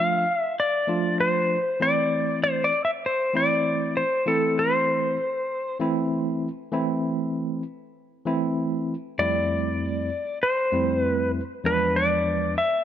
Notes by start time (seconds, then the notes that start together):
Already playing: F3 A3 D4 F4 F5
0.39 E5
0.60 D5
0.87 F3 A3 D4 F4
1.20 C5
1.80 E3 A3 C4 E4 D5
2.44 C5
2.64 D5
2.85 E5
3.06 C5
3.33 E3 A3 C4 E4 D5
3.97 C5
4.26 E3 A3 C4 E4 A4
4.59 C5
5.80 E3 A3 C4 E4
6.72 E3 A3 C4 E4
8.25 E3 A3 C4 E4
9.18 F2 G3 A3 C4 E4 D5
10.43 C5
10.72 F2 G3 A3 C4 E4
11.02 B4
11.64 E2 F3 G#3 B3 D4 B4
11.96 D5
12.58 E5